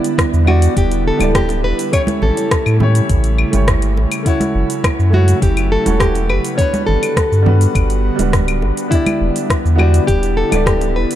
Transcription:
Already playing: analog synth pad D3 G3 B3 E4, grand piano B3 D4 E4 G4 D5, nylon-string guitar E4
0.04 closed hi-hat, cabasa
0.18 kick, cross-stick, closed hi-hat, cabasa
0.33 sub bass E2, cabasa
0.44 grand piano B3 D4 E4, nylon-string guitar F#4, high conga, claves
0.49 grand piano G4 D5
0.62 closed hi-hat, cabasa
0.76 sub bass E1, nylon-string guitar G4, kick, closed hi-hat, cabasa
0.92 closed hi-hat, cabasa
1.08 nylon-string guitar A4
1.17 sub bass D1, grand piano B3 D4 E4, closed hi-hat, high conga, cabasa, claves
1.22 grand piano G4 D5
1.35 nylon-string guitar G4, kick, cross-stick, closed hi-hat, cabasa
1.49 closed hi-hat, high bongo, cabasa
1.64 sub bass E1, nylon-string guitar B4
1.79 closed hi-hat, cabasa
1.91 analog synth pad C#3 A3, grand piano A3 C#4 E4 G4, nylon-string guitar C#5, kick, closed hi-hat, cabasa, claves
1.96 grand piano C#5
2.07 closed hi-hat, high conga, cabasa
2.22 sub bass A1, nylon-string guitar A4, low conga
2.37 closed hi-hat, cabasa
2.51 kick, cross-stick, closed hi-hat, cabasa
2.66 sub bass A2, cabasa, claves
2.77 grand piano A3 C#4 E4, high conga, low conga
2.81 grand piano G4 C#5
2.95 closed hi-hat, cabasa
3.09 sub bass A1, kick, closed hi-hat, cabasa
3.24 closed hi-hat, cabasa
3.38 claves
3.50 sub bass G1, grand piano A3 C#4 E4, closed hi-hat, high conga, cabasa
3.54 grand piano G4 C#5
3.68 kick, cross-stick, closed hi-hat, cabasa
3.82 closed hi-hat, cabasa
3.97 sub bass A1, high bongo
4.12 closed hi-hat, cabasa, claves
4.22 analog synth pad F#3 A3 E4, grand piano A3 C#4 E4, kick, closed hi-hat
4.27 nylon-string guitar E4, grand piano F#4 C#5, cabasa
4.40 closed hi-hat, high conga, cabasa
4.55 sub bass F#1
4.70 closed hi-hat, cabasa
4.84 kick, cross-stick, closed hi-hat, cabasa, claves
4.99 sub bass F#2, cabasa
5.10 grand piano A3 C#4 E4 F#4, high conga
5.14 nylon-string guitar F#4, grand piano C#5
5.28 closed hi-hat, cabasa
5.42 sub bass F#1, nylon-string guitar G4, kick, closed hi-hat, cabasa
5.57 closed hi-hat, cabasa, claves
5.72 nylon-string guitar A4
5.83 sub bass E1, grand piano A3 C#4 E4, closed hi-hat, high conga, cabasa
5.87 grand piano F#4 C#5
6.00 nylon-string guitar G4, kick, cross-stick, closed hi-hat, cabasa
6.15 closed hi-hat, high bongo, cabasa
6.30 sub bass F#1, nylon-string guitar B4, claves
6.44 closed hi-hat, cabasa
6.56 analog synth pad D3 G3 B3 F#4, grand piano G3 B3 D4, nylon-string guitar C#5, kick, closed hi-hat, cabasa
6.60 grand piano F#4 B4
6.74 closed hi-hat, high conga, cabasa
6.87 sub bass G1, nylon-string guitar A4, low conga
7.03 closed hi-hat, cabasa, claves
7.17 kick, cross-stick, closed hi-hat, cabasa
7.32 sub bass G2, cabasa
7.43 grand piano G3 B3 D4, high conga, low conga
7.47 grand piano F#4 B4
7.61 closed hi-hat, cabasa
7.75 sub bass G1, kick, closed hi-hat, cabasa, claves
7.90 closed hi-hat, cabasa
8.16 sub bass D1, grand piano G3 B3 D4, closed hi-hat, high conga, cabasa
8.20 grand piano F#4 B4
8.33 kick, cross-stick, closed hi-hat, cabasa
8.48 closed hi-hat, cabasa, claves
8.62 sub bass G1, high bongo
8.77 closed hi-hat, cabasa
8.88 grand piano B3 D4 E4, nylon-string guitar E4, analog synth pad E4, kick, closed hi-hat
8.92 grand piano G4 D5, cabasa
9.06 closed hi-hat, high conga, cabasa, claves
9.21 sub bass E1
9.36 closed hi-hat, cabasa
9.50 kick, cross-stick, closed hi-hat, cabasa
9.65 sub bass E2, cabasa
9.75 grand piano B3 D4 E4, nylon-string guitar F#4, high conga, claves
9.80 grand piano G4 D5
9.94 closed hi-hat, cabasa
10.07 sub bass E1, nylon-string guitar G4, kick, closed hi-hat, cabasa
10.23 closed hi-hat, cabasa
10.37 nylon-string guitar A4
10.49 sub bass D1, grand piano B3 D4 E4, closed hi-hat, high conga, cabasa, claves
10.54 grand piano G4 D5
10.66 nylon-string guitar G4, kick, cross-stick, closed hi-hat, cabasa
10.81 closed hi-hat, high bongo, cabasa
10.96 sub bass E1, nylon-string guitar B4
11.11 closed hi-hat, cabasa

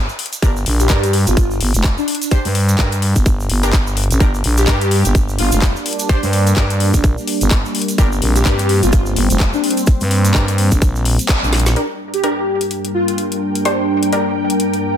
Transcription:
0.09 shaker
0.19 open hi-hat
0.26 closed hi-hat
0.33 closed hi-hat, shaker
0.42 fm bass G1, synth stab D4 G4 A#4, kick, closed hi-hat, shaker
0.56 shaker
0.66 fm bass A#1, open hi-hat
0.80 digital synth lead G4, closed hi-hat, shaker
0.89 fm bass G2, synth stab D4 G4 A#4, kick, clap, shaker
1.03 closed hi-hat, shaker
1.13 open hi-hat
1.27 fm bass G1, digital synth lead F4, closed hi-hat, shaker
1.37 kick, closed hi-hat, shaker
1.51 shaker
1.61 fm bass G1, open hi-hat
1.74 fm bass F1, closed hi-hat, shaker
1.84 kick, clap, closed hi-hat, shaker
1.98 digital synth lead D4, shaker
2.08 digital synth lead D4, open hi-hat
2.15 closed hi-hat
2.22 closed hi-hat, shaker
2.31 synth stab D4 G4 C5, kick, closed hi-hat, shaker
2.45 fm bass G2, open hi-hat, shaker
2.55 open hi-hat
2.69 closed hi-hat, shaker
2.78 fm bass G2, synth stab D4 G4 A#4, kick, clap, shaker
2.92 closed hi-hat, shaker
3.02 open hi-hat
3.16 fm bass G1, kick, closed hi-hat, shaker
3.26 kick, closed hi-hat, shaker
3.40 shaker
3.50 fm bass G1, open hi-hat
3.63 synth stab D4 G4 A#4, closed hi-hat, shaker
3.73 fm bass G1, kick, clap, closed hi-hat, shaker
3.87 shaker
3.97 open hi-hat
4.04 closed hi-hat
4.11 fm bass A1, closed hi-hat, shaker
4.20 fm bass G1, analog synth pad G3 A#3 D4, synth stab D4 G4 A#4, kick, closed hi-hat, shaker
4.34 shaker
4.44 fm bass A#1, open hi-hat
4.57 digital synth lead G4, closed hi-hat, shaker
4.67 fm bass G2, synth stab D4 G4 A#4, kick, clap, shaker
4.81 closed hi-hat, shaker
4.91 open hi-hat
5.05 fm bass G1, closed hi-hat, shaker
5.15 kick, closed hi-hat, shaker
5.29 shaker
5.38 fm bass G1, digital synth lead F4, open hi-hat
5.52 fm bass F1, digital synth lead F4, closed hi-hat, shaker
5.62 kick, clap, closed hi-hat, shaker
5.76 shaker
5.86 open hi-hat
5.93 closed hi-hat
5.99 closed hi-hat, shaker
6.09 synth stab D4 G4 C5, kick, closed hi-hat, shaker
6.23 fm bass G2, open hi-hat, shaker
6.33 open hi-hat
6.47 closed hi-hat, shaker
6.56 fm bass G2, synth stab D4 G4 A#4, kick, clap, shaker
6.70 closed hi-hat, shaker
6.80 open hi-hat
6.94 fm bass A#1, kick, closed hi-hat, shaker
7.04 kick, closed hi-hat, shaker
7.18 shaker
7.27 open hi-hat
7.41 fm bass G1, closed hi-hat, shaker
7.50 kick, clap, closed hi-hat, shaker
7.65 shaker
7.75 open hi-hat
7.82 closed hi-hat
7.88 closed hi-hat, shaker
7.98 fm bass G1, analog synth pad C4, synth stab D4 G4 A#4, kick, closed hi-hat, shaker
8.12 shaker
8.22 fm bass A#1, open hi-hat
8.36 digital synth lead G4, closed hi-hat, shaker
8.45 fm bass G2, synth stab D4 G4 A#4, kick, clap, shaker
8.59 closed hi-hat, shaker
8.69 open hi-hat
8.83 fm bass G1, digital synth lead F4, closed hi-hat, shaker
8.92 kick, closed hi-hat, shaker
9.06 shaker
9.16 fm bass G1, open hi-hat
9.30 fm bass F1, closed hi-hat, shaker
9.40 kick, clap, closed hi-hat, shaker
9.53 digital synth lead D4, shaker
9.64 digital synth lead D4, open hi-hat
9.71 closed hi-hat
9.77 closed hi-hat, shaker
9.86 kick, closed hi-hat, shaker
10.01 fm bass G2, open hi-hat, shaker
10.11 open hi-hat
10.25 closed hi-hat, shaker
10.34 fm bass G2, synth stab D4 G4 A#4, kick, clap, shaker
10.48 closed hi-hat, shaker
10.58 open hi-hat
10.71 fm bass A#1, kick, closed hi-hat, shaker
10.82 kick, closed hi-hat, shaker
10.96 shaker
11.05 open hi-hat
11.19 closed hi-hat, shaker
11.29 kick, clap, closed hi-hat, shaker
11.43 fm bass A#1, shaker
11.53 snare, open hi-hat
11.60 closed hi-hat
11.66 snare, closed hi-hat, shaker
11.76 analog synth pad G2 G3 A#3 D4, ambient pad D4, synth stab D4 G4 A#4, closed hi-hat
11.91 ambient pad A#4
12.14 digital synth lead G4, closed hi-hat
12.24 synth stab D4 G4 A#4, closed hi-hat
12.61 closed hi-hat
12.67 ambient pad G5
12.71 closed hi-hat
12.85 closed hi-hat
12.94 digital synth lead F4
13.08 digital synth lead F4, closed hi-hat
13.18 ambient pad A#5, closed hi-hat
13.32 closed hi-hat
13.55 closed hi-hat
13.65 synth stab D4 G4 C5, closed hi-hat
14.03 closed hi-hat
14.13 synth stab D4 G4 A#4, closed hi-hat
14.50 closed hi-hat
14.60 closed hi-hat
14.74 closed hi-hat

